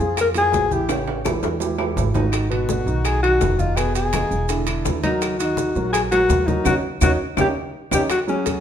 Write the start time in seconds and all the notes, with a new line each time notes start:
Already playing: G#4
0.00 F2 F3 F4 G#4, maracas
0.17 A#4, high bongo, high conga, high timbale, claves, maracas
0.34 F3 F4 G#4, high conga, high timbale, maracas
0.52 A1, high bongo, low bongo, high conga, low timbale, maracas
0.71 E3 E4 G4, high conga, maracas
0.89 C#3 C#4 C#5, high bongo, high conga, high timbale, claves, maracas
1.07 high bongo, high conga, high timbale
1.25 E3 E4 G4, high bongo, high conga, low timbale, claves, maracas
1.43 E2, high bongo, high conga, low timbale, maracas
1.60 E3 E4 G4, high conga, low timbale, maracas
1.78 E3 E4 G4, high conga, low timbale, claves
1.96 G#1, high conga, low timbale, maracas
2.14 D#3 D#4 F#4, low bongo, high conga, low timbale, maracas
2.32 high bongo, high timbale, claves, maracas
2.50 B2 B3 F#4 B4, high conga, high timbale
2.69 high bongo, high conga, maracas
2.86 B1 D#3 D#4 F#4, maracas
3.05 G#4, high bongo, high conga, high timbale, claves, maracas
3.23 D#3 D#4 F#4, high conga, high timbale
3.40 F1, high bongo, low bongo, high conga, low timbale, maracas
3.58 D#3 D#4 F4, high conga, maracas
3.76 B2 B3 G#4 B4, high bongo, high conga, high timbale, claves, maracas
3.95 G#4, high bongo, high conga, high timbale, maracas
4.13 D#3 D#4 F4, high bongo, high conga, high timbale, claves, maracas
4.31 E1, high bongo, high conga, maracas
4.48 D3 D4 E4, high bongo, high conga, high timbale, maracas
4.67 D3 D4 E4, high conga, high timbale, claves, maracas
4.85 D#2, high bongo, low bongo, high conga, low timbale, maracas
5.03 F#3 D#4 F#4 A#4, high bongo, high conga, high timbale, maracas
5.22 high bongo, high conga, high timbale, claves, maracas
5.39 D#3 D#4 F#4 D#5, high conga, high timbale, maracas
5.57 high bongo, high conga, maracas
5.76 A#1 F#3 F#4 A#4, maracas
5.93 G#4, high bongo, high conga, high timbale, claves, maracas
6.12 F#3 F#4 A#4, high conga, high timbale, maracas
6.29 D#2, high bongo, low bongo, high conga, low timbale, maracas
6.47 F#3 D#4 F#4 A#4, high conga, maracas
6.65 D#2 C#4 D#4 F#4, low bongo, high conga, high timbale, claves, maracas
7.01 D#2 C#4 D#4 F#4, low bongo, high conga, high timbale, claves, maracas
7.37 D#2 C#4 D#4 G4, low bongo, high conga, high timbale, claves, maracas
7.91 D#2 C#4 D#4 G4, low bongo, high conga, high timbale, claves, maracas
8.10 F#4, high bongo, high conga, high timbale, claves, maracas
8.27 F#3 C#4 F#4 G#4, high conga, maracas
8.46 high bongo, high conga, high timbale, maracas